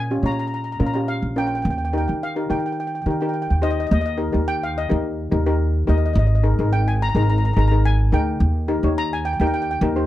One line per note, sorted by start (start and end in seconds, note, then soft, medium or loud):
0.00 0.20 A#2 medium
0.11 0.19 C#4 medium
0.11 0.19 F4 medium
0.11 0.19 G4 medium
0.23 0.76 A#2 medium
0.23 0.58 C#4 medium
0.23 0.58 F4 medium
0.23 0.58 C#5 medium
0.23 0.31 A#5 medium
0.32 0.38 A#5 medium
0.39 0.46 A#5 medium
0.47 0.53 A#5 medium
0.54 0.62 A#5 medium
0.64 0.71 A#5 medium
0.72 0.78 A#5 medium
0.80 1.20 A#2 medium
0.80 0.89 C#4 medium
0.80 0.89 F4 medium
0.80 0.89 A#4 medium
0.80 0.85 A#5 medium
0.87 0.92 A#5 medium
0.94 1.20 C#4 medium
0.94 1.20 F4 medium
0.94 1.20 G4 medium
0.94 1.00 A#5 medium
1.08 1.37 F5 medium
1.22 1.61 A#1 medium
1.36 1.65 C#4 medium
1.36 1.65 F4 medium
1.36 1.65 A#4 medium
1.36 1.45 G5 medium
1.47 1.53 G5 medium
1.55 1.60 G5 medium
1.62 2.05 D#2 loud
1.62 1.68 G5 medium
1.70 1.76 G5 medium
1.78 1.84 G5 medium
1.85 1.90 G5 medium
1.93 2.19 D#4 medium
1.93 2.19 G4 medium
1.93 2.19 A#4 medium
1.93 1.97 G5 soft
1.98 2.05 G5 medium
2.08 2.47 D#3 medium
2.08 2.13 G5 medium
2.23 2.51 F5 medium
2.36 2.44 D#4 medium
2.36 2.44 G4 medium
2.36 2.44 A#4 medium
2.50 3.02 D#3 medium
2.50 2.84 D#4 medium
2.50 2.84 G4 medium
2.50 2.84 A#4 medium
2.50 2.58 G5 medium
2.60 2.65 G5 soft
2.66 2.71 G5 medium
2.72 2.79 G5 soft
2.80 2.86 G5 medium
2.87 2.94 G5 soft
2.95 3.01 G5 soft
3.02 3.09 G5 soft
3.06 3.46 D#3 medium
3.06 3.15 D#4 medium
3.06 3.15 G4 medium
3.06 3.15 A#4 medium
3.10 3.18 G5 soft
3.21 3.47 D#4 medium
3.21 3.47 G4 medium
3.21 3.47 A#4 medium
3.21 3.26 G5 soft
3.29 3.32 G5 medium
3.34 3.40 G5 soft
3.42 3.48 G5 medium
3.50 3.88 D#2 medium
3.50 3.56 G5 medium
3.62 3.91 D#4 medium
3.62 3.90 G4 medium
3.62 3.90 C5 medium
3.62 3.69 D#5 loud
3.71 3.78 D#5 medium
3.80 3.86 D#5 medium
3.87 3.91 D#5 medium
3.91 4.31 D#2 loud
3.91 4.00 D#5 medium
4.01 4.05 D#5 medium
4.06 4.13 D#5 medium
4.17 4.27 D#4 medium
4.17 4.27 G4 medium
4.17 4.27 A#4 medium
4.32 4.86 D#2 medium
4.32 4.67 D#4 medium
4.32 4.67 G4 medium
4.32 4.67 A#4 medium
4.48 4.63 G5 loud
4.63 4.76 F5 medium
4.78 5.88 D#5 medium
4.89 5.29 D#2 medium
4.89 5.15 D#4 medium
4.89 5.15 G4 medium
4.89 5.15 A#4 medium
5.31 5.84 D#2 medium
5.31 5.40 D#4 medium
5.31 5.41 G4 medium
5.31 5.41 A#4 medium
5.46 5.72 D#4 medium
5.46 5.72 G4 medium
5.46 5.72 A#4 medium
5.87 6.14 D#2 medium
5.87 6.16 D#4 medium
5.87 6.16 G4 medium
5.87 6.16 A#4 medium
5.87 5.96 D#5 medium
5.98 6.04 D#5 medium
6.06 6.11 D#5 medium
6.13 6.56 G#1 loud
6.13 6.18 D#5 medium
6.19 6.26 D#5 medium
6.27 6.34 D#5 medium
6.35 6.41 D#5 medium
6.43 6.53 D#4 medium
6.43 6.53 G#4 medium
6.43 6.53 A#4 medium
6.59 7.11 G#1 medium
6.59 6.93 D#4 medium
6.59 6.93 G#4 medium
6.59 6.93 A#4 medium
6.73 6.79 G5 medium
6.88 6.94 G#5 medium
7.02 7.08 A#5 loud
7.09 7.16 A#5 medium
7.15 7.53 G#1 medium
7.15 7.41 D#4 medium
7.15 7.41 G#4 medium
7.15 7.41 A#4 medium
7.15 7.22 A#5 medium
7.23 7.28 A#5 medium
7.30 7.37 A#5 medium
7.38 7.44 A#5 medium
7.45 7.52 A#5 medium
7.53 8.09 G#1 loud
7.53 7.66 D#4 medium
7.53 7.66 G#4 medium
7.53 7.66 A#4 medium
7.53 7.58 A#5 medium
7.59 7.67 A#5 medium
7.68 7.97 D#4 medium
7.68 7.97 G#4 medium
7.68 7.76 A#5 medium
7.72 7.97 A#4 medium
7.85 7.98 G#5 medium
8.12 8.39 D2 medium
8.12 8.41 D#4 medium
8.12 8.41 G#4 medium
8.12 8.41 A#4 medium
8.12 8.66 G5 medium
8.40 8.81 D#2 loud
8.68 8.78 D#4 medium
8.68 8.78 G4 medium
8.68 8.78 A#4 medium
8.83 9.36 D#2 medium
8.83 9.18 D#4 medium
8.83 9.18 G4 medium
8.83 9.18 C#5 medium
8.98 9.13 A#5 loud
9.13 9.25 G#5 medium
9.25 9.32 G5 medium
9.33 9.40 G5 medium
9.40 9.78 D#2 medium
9.40 9.66 D#4 medium
9.40 9.66 G4 medium
9.40 9.66 A#4 medium
9.40 9.46 G5 medium
9.47 9.53 G5 medium
9.54 9.61 G5 medium
9.62 9.70 G5 medium
9.71 9.78 G5 medium
9.81 10.06 D#2 loud
9.81 9.92 D#4 medium
9.81 9.92 G4 medium
9.81 9.91 A#4 medium
9.96 10.06 D#4 medium
9.96 10.06 G4 medium
9.96 10.06 C5 medium